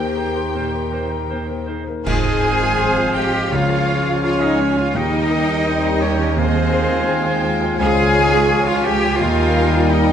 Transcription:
Already playing: D#2 D#3 A#3 D#4 G4 A#4 C5 G5 A#5
0.16 G#4 A#4 C5 A#5
0.35 A#4 C6
0.53 A#2 A#4 C5 A#5
0.73 A#4 C6
0.91 A#4 C5 A#5
1.11 A#4
1.29 A#3 A#4 C5
1.49 A#3 A#4
1.67 D#4 G#4 A#4 C5
1.87 A#3 A#4
2.05 G#1 G#2 F3 C4 G#4 C5 D#5 F5 G#5, concert bass drum, crash
2.24 G#3 G#4
2.42 D#3 C5
2.61 F4 F5
2.78 F3 F4 G#4 C5 F5 C6
2.98 F4
3.14 G#3 F4 G4 D#5 G5
3.33 F4 C5
3.51 C#2 C#3 A#3 C#4 F4 C#5 F5
3.69 G#3 G#4
3.87 G#3 C#5
4.05 F4 F5
4.22 F4 G#4 C#5 F5 G#5 C#6
4.40 D#4 F4 D#5 F5
4.59 G#3 C#4 G#4 C#5
4.77 F4 C#5 F5
4.94 D#2 D#3 G3 D#4 G4 A#4 D#5 G5
5.12 G3 G4
5.30 A#3 A#4
5.47 G4 G5
5.66 C4 G4 A#4 D#5 A#5
5.84 G4 G5
6.01 G3 A#3 C#4 C#5
6.19 G4 A#4
6.37 D#2 D#3 G#3 C4 F4 G#4 C5 D#5 F5 G#5
6.55 G#3 G#4
6.73 A#4 C5
6.90 F4 F5
7.08 G#3 D#4 G#4 C5 G5 C6
7.25 F4 F5
7.43 G#3 F4
7.61 F4 C5
7.78 C#2 C#3 F4 G#4 C#5 F5 G#5
7.97 G#3 G#4
8.14 D#4 C#5
8.31 F4 F5
8.48 F3 F4 G#4 C#5 G#5 C#6
8.67 F4 F5
8.83 G#3 G4 G5
9.02 F4 C#5
9.18 D#2 D#3 G3 A#3 F4 A#4 D#5 F5 G5
9.37 D#4 G4
9.55 G3 A#4
9.73 D#4 A#5
9.89 D#4 A#4 D#5 G5
9.93 G4
10.08 A#5

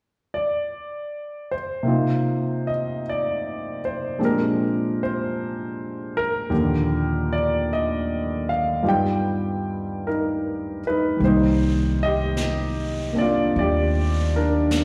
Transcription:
0.34 D5
1.51 C5
1.83 C3 A#3 C4 D#4
1.87 F4
2.67 D#5
3.09 D5
3.85 C5
4.19 A#2 F3 G#3 C4 D4 G4
4.25 A#4
5.03 C5
6.17 A#4
6.50 D#2 A#2 D3 F3 G4
7.33 D5
7.73 D#5
8.49 F5
8.83 G2 G3 B3 D#4 F4 G4
8.89 G5
10.07 D#4 A#4
10.87 D#4 B4
11.17 C2 D#3 G3 A#3, brush sweep
11.25 D#4 C5
12.03 G4 D#5
12.37 brush sweep, snare, hi-hat pedal
13.13 A#3 C4 D4
13.18 F4 D5
13.54 D#2, brush sweep
13.59 G4 D5
14.36 D4 A#4
14.71 brush sweep, snare, hi-hat pedal

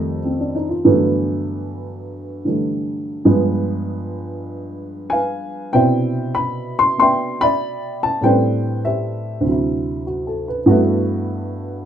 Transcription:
Already playing: F2 D#3 G3 A3 G4 D#5
0.25 C4
0.40 D4
0.55 D#4
0.69 F4
0.85 G2 D3 E3 F#3 A3 B3
2.45 D3 E3 G3 A3
3.25 G2 F3 G#3 B3
5.10 B4 F5 G#5
5.73 B2 C3 D4 E4 C5 E5 G5
6.35 B5
6.79 C6
6.98 B3 D4 E5 G5 C6
7.41 D5 E5 B5
8.03 A5
8.21 A2 G3 A3 C4 B4 G5
8.25 D4 C5
8.85 G4 C5 E5
9.41 D2
9.45 C3 F#3
9.52 E4
10.07 F#4
10.27 A4
10.48 B4
10.66 G2 A3 B3 F#4
10.71 E4

